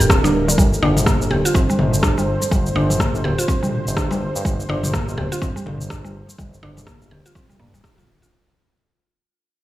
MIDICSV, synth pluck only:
0, 0, Header, 1, 2, 480
1, 0, Start_track
1, 0, Key_signature, -2, "minor"
1, 0, Tempo, 483871
1, 576, Time_signature, 4, 2, 24, 8
1, 9553, End_track
2, 0, Start_track
2, 0, Title_t, "Synth pluck"
2, 0, Program_c, 0, 84
2, 97, Note_on_c, 0, 60, 88
2, 232, Note_off_c, 0, 60, 0
2, 240, Note_on_c, 0, 62, 83
2, 327, Note_off_c, 0, 62, 0
2, 479, Note_on_c, 0, 50, 82
2, 572, Note_off_c, 0, 50, 0
2, 578, Note_on_c, 0, 55, 85
2, 654, Note_off_c, 0, 55, 0
2, 819, Note_on_c, 0, 62, 104
2, 894, Note_off_c, 0, 62, 0
2, 1058, Note_on_c, 0, 58, 82
2, 1185, Note_off_c, 0, 58, 0
2, 1298, Note_on_c, 0, 67, 76
2, 1432, Note_off_c, 0, 67, 0
2, 1441, Note_on_c, 0, 65, 79
2, 1493, Note_off_c, 0, 65, 0
2, 1538, Note_on_c, 0, 60, 105
2, 1665, Note_off_c, 0, 60, 0
2, 1683, Note_on_c, 0, 55, 80
2, 1769, Note_off_c, 0, 55, 0
2, 2019, Note_on_c, 0, 62, 84
2, 2146, Note_off_c, 0, 62, 0
2, 2160, Note_on_c, 0, 55, 79
2, 2247, Note_off_c, 0, 55, 0
2, 2497, Note_on_c, 0, 55, 84
2, 2574, Note_off_c, 0, 55, 0
2, 2735, Note_on_c, 0, 62, 104
2, 2813, Note_off_c, 0, 62, 0
2, 2977, Note_on_c, 0, 58, 82
2, 3105, Note_off_c, 0, 58, 0
2, 3216, Note_on_c, 0, 67, 73
2, 3351, Note_off_c, 0, 67, 0
2, 3358, Note_on_c, 0, 65, 83
2, 3411, Note_off_c, 0, 65, 0
2, 3456, Note_on_c, 0, 60, 105
2, 3584, Note_off_c, 0, 60, 0
2, 3597, Note_on_c, 0, 55, 79
2, 3686, Note_off_c, 0, 55, 0
2, 3934, Note_on_c, 0, 62, 84
2, 4063, Note_off_c, 0, 62, 0
2, 4078, Note_on_c, 0, 55, 80
2, 4166, Note_off_c, 0, 55, 0
2, 4416, Note_on_c, 0, 55, 85
2, 4493, Note_off_c, 0, 55, 0
2, 4658, Note_on_c, 0, 62, 105
2, 4734, Note_off_c, 0, 62, 0
2, 4895, Note_on_c, 0, 58, 82
2, 5023, Note_off_c, 0, 58, 0
2, 5136, Note_on_c, 0, 67, 74
2, 5271, Note_off_c, 0, 67, 0
2, 5277, Note_on_c, 0, 65, 84
2, 5331, Note_off_c, 0, 65, 0
2, 5373, Note_on_c, 0, 60, 105
2, 5503, Note_off_c, 0, 60, 0
2, 5515, Note_on_c, 0, 55, 78
2, 5605, Note_off_c, 0, 55, 0
2, 5853, Note_on_c, 0, 62, 82
2, 5983, Note_off_c, 0, 62, 0
2, 5997, Note_on_c, 0, 55, 82
2, 6086, Note_off_c, 0, 55, 0
2, 6333, Note_on_c, 0, 55, 86
2, 6411, Note_off_c, 0, 55, 0
2, 6575, Note_on_c, 0, 62, 109
2, 6653, Note_off_c, 0, 62, 0
2, 6815, Note_on_c, 0, 58, 85
2, 6944, Note_off_c, 0, 58, 0
2, 7055, Note_on_c, 0, 67, 78
2, 7191, Note_off_c, 0, 67, 0
2, 7199, Note_on_c, 0, 65, 80
2, 7252, Note_off_c, 0, 65, 0
2, 7294, Note_on_c, 0, 60, 102
2, 7423, Note_off_c, 0, 60, 0
2, 7437, Note_on_c, 0, 55, 78
2, 7526, Note_off_c, 0, 55, 0
2, 7534, Note_on_c, 0, 58, 80
2, 7663, Note_off_c, 0, 58, 0
2, 7678, Note_on_c, 0, 55, 78
2, 7766, Note_off_c, 0, 55, 0
2, 7775, Note_on_c, 0, 62, 86
2, 7852, Note_off_c, 0, 62, 0
2, 7917, Note_on_c, 0, 65, 77
2, 8006, Note_off_c, 0, 65, 0
2, 8156, Note_on_c, 0, 65, 78
2, 8210, Note_off_c, 0, 65, 0
2, 9553, End_track
0, 0, End_of_file